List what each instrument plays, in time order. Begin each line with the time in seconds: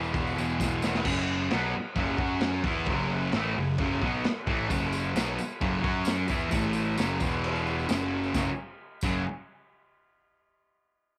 Already playing: picked electric bass E1, distorted electric guitar E2 B2 E3
0.04 tambourine
0.14 picked electric bass E1, distorted electric guitar E2 B2 E3, kick, tambourine, crash
0.27 tambourine
0.37 picked electric bass E1, distorted electric guitar E2 B2 E3, tambourine
0.50 tambourine
0.60 picked electric bass E1, distorted electric guitar E2 B2 E3, kick, snare, tambourine
0.82 picked electric bass E1, distorted electric guitar E2 B2 E3, snare, tambourine
0.95 snare
1.05 picked electric bass F#1, distorted electric guitar F#2 C#3 F#3, kick, crash
1.51 picked electric bass B1, distorted electric guitar B2 F#3 B3, snare, crash
1.75 muted picked electric bass stroke, muted distorted electric guitar stroke
1.95 picked electric bass F#1, distorted electric guitar F#2 C#3 F#3, kick, crash
2.18 picked electric bass F#2, distorted electric guitar F#3 C#4 F#4, kick
2.41 snare, crash
2.64 picked electric bass E2, distorted electric guitar E3 B3 E4, kick
2.86 picked electric bass F#1, distorted electric guitar F#2 C#3 F#3, kick, crash
3.32 picked electric bass A1, distorted electric guitar A2 E3 A3, snare, crash
3.57 picked electric bass F#1, distorted electric guitar F#2 C#3
3.78 picked electric bass F#1, distorted electric guitar F#2 C#3 F#3, kick, crash
4.02 picked electric bass B1, distorted electric guitar B2 F#3 B3, kick
4.24 muted distorted electric guitar stroke, muted picked electric bass stroke, snare, crash
4.47 picked electric bass A1, distorted electric guitar A2 E3 A3, kick
4.69 picked electric bass F#1, distorted electric guitar F#2 C#3 F#3, kick, tambourine, crash
4.92 tambourine
5.15 picked electric bass B1, distorted electric guitar B2 F#3 B3, snare, tambourine, crash
5.27 tambourine
5.39 muted distorted electric guitar stroke, muted picked electric bass stroke, tambourine
5.51 tambourine
5.61 picked electric bass F#1, distorted electric guitar F#2 C#3 F#3, kick, tambourine, crash
5.83 picked electric bass F#2, distorted electric guitar F#3 C#4 F#4, kick
6.05 snare, tambourine, crash
6.28 picked electric bass E2, distorted electric guitar E3 B3 E4, kick, tambourine
6.40 tambourine
6.50 picked electric bass A1, distorted electric guitar A2 E3 A3, kick, tambourine, crash
6.63 tambourine
6.73 tambourine
6.85 tambourine
6.97 picked electric bass F#1, distorted electric guitar F#2 C#3 F#3, snare, tambourine, crash
7.09 tambourine
7.20 picked electric bass E1, distorted electric guitar E2 B2 E3, kick, tambourine
7.44 tambourine, crash
7.55 tambourine
7.67 tambourine
7.79 tambourine
7.89 picked electric bass F#1, distorted electric guitar F#2 C#3 F#3, snare, tambourine, crash
8.24 tambourine
8.34 picked electric bass F#1, distorted electric guitar F#2 C#3 F#3, kick, snare, tambourine
9.01 picked electric bass F#1, distorted electric guitar F#2 C#3 F#3, kick, crash, tambourine